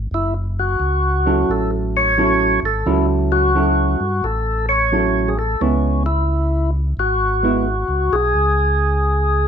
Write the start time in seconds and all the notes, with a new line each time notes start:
0.11 F#1 E4
0.59 F#4
0.80 C#2
1.26 F#3 C#4 E4 A4
1.49 A1 A4
1.97 C#5
2.17 F#3 C#4 E4 A4
2.63 G#1 A4
2.86 C#2 F#3 C#4 E4 A4
3.32 F#4
3.55 F#3 C#4 E4 A4
4.00 G2
4.23 A1 A4
4.69 C#5
4.92 F#3 C#4 E4 A4
5.28 G#4
5.39 A4
5.61 C#2 G#3 B3 C#4 E4
6.06 E4
6.97 G#1 F#4
7.43 G#3 B3 E4
7.88 C#2
8.12 B1 G#4
8.34 C#2